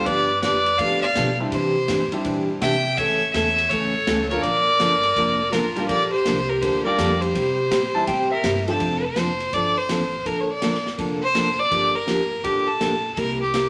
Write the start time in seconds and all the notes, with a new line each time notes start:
0.05 G2 D3 F3 B3 D4 G4 B4 D5, kick, ride
0.41 F2 D3 F3 B3 D4 G4 B4 D5, snare, hi-hat pedal, ride
0.66 ride
0.78 A2 D3 F3 B3 D4 G4 D5 F5, kick, ride
1.01 D5 F5
1.15 B2 D3 F3 B3 D4 G4, snare, hi-hat pedal, ride
1.39 G3 C4 D4 E4 G4
1.51 C3 E3 D4 G4 C5, kick, ride
1.88 A2 C3 E3 D4 G4, snare, hi-hat pedal, ride
2.12 G3 C4 D4 E4 G4, muted upright bass stroke, ride
2.24 A#2 C3 E3 D4 G4, kick, ride
2.61 C3 E3 D4 G4 E5 G5, snare, hi-hat pedal, ride
2.97 A2 C#3 E3 A3 C#4 A4 C#5 E5, kick, ride
3.33 E2 C#3 E3 A3 C#4 A4 C#5 E5, snare, hi-hat pedal, ride
3.58 ride
3.69 A1 C#3 E3 A3 C#4 A4 C#5, kick, ride
4.07 C#2 C#3 E3 A3 C#4 A4, snare, hi-hat pedal, ride
4.29 F3 A#3 D4 F4 A4 A#4 C#5, ride
4.41 A#1 D3 F3 A#3 D4 A#4 D5, kick, ride
4.80 G1 D3 F3 A#3 D4 A#4, snare, hi-hat pedal, ride
5.03 ride
5.16 F1 D3 F3 A#3 D4 A#4, kick, ride
5.51 A1 D3 F3 A#3 D4 F4 A#4, snare, hi-hat pedal, ride
5.76 G3 A#3 D4 F4 G4, ride
5.88 A#1 D3 F3 A#3 D4 G4 A#4 D5, kick, ride
6.12 G4 C5
6.25 C2 D3 F3 A#3 D4 G4, snare, hi-hat pedal, ride
6.48 G4 A#4
6.60 D2 D3 F3 A#3 D4 G4 C5, kick, ride
6.84 G3 A#3 D4 F4 G4 A#4 D5
6.98 F2 D3 F3 A#3 D4 G4, snare, hi-hat pedal, ride
7.21 G4 C5, ride
7.34 C3 G3 C4 E4 G4, kick, ride
7.70 A#2 C3 G3 C4 E4 G4, snare, hi-hat pedal, ride
7.95 E3 G3 C4 E4 G4 A5
8.07 A2 C3 G3 C4 E4 G4 G5, kick, ride
8.31 A#4 E5
8.44 G2 C3 G3 C4 E4 G4, snare, hi-hat pedal, ride
8.67 F3 A3 C4 D4 G4 A4, ride
8.80 F1 F3 C4 D4 A4, kick, ride
9.05 C5
9.16 F1 F3 C4 D4 A4, snare, hi-hat pedal, ride
9.40 ride
9.53 G1 F3 C4 D4 A4 D5, kick, ride
9.78 C5
9.89 A1 F3 C4 D4 A4, snare, hi-hat pedal, ride
10.25 A#1 D3 F3 A#3 D4 A4 A#4, kick, ride
10.40 C#5
10.50 D5
10.61 D3 F3 A#3 D4 A4, snare, hi-hat pedal, ride
10.74 snare
10.86 snare
10.98 F1 D3 F3 A#3 D4 A4, kick, ride
11.22 C5
11.35 D3 F3 A#3 D4 A4, snare, hi-hat pedal, ride
11.59 D5
11.71 G1 D3 F3 A#3 D4 G4, kick, ride
11.95 A#4
12.06 D3 F3 A#3 D4 G4, snare, hi-hat pedal, ride
12.43 A1 D3 F3 A#3 D4 G4, kick, ride
12.67 A4
12.80 A#1 D3 F3 A#3 D4 G4, snare, hi-hat pedal, ride
13.14 C2 C3 G3 A#3 E4 G4 A4 A#4, kick, ride
13.42 G4
13.53 C3 G3 A#3 E4 G4, snare, hi-hat pedal, ride